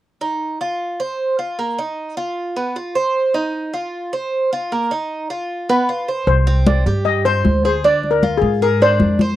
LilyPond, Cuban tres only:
\new Staff \with { instrumentName = "Cuban tres" } { \time 4/4 \key c \minor \tempo 4 = 153 r8 ees'4 f'4 c''4 f'8 | bes8 ees'4 f'4 b8 f'8 c''8~ | c''8 ees'4 f'4 c''4 f'8 | bes8 ees'4 f'4 b8 f'8 c''8 |
r8 c'4 g'4 c''4 aes'8 | d'4 f'4 aes'8 d'4 c''8 | }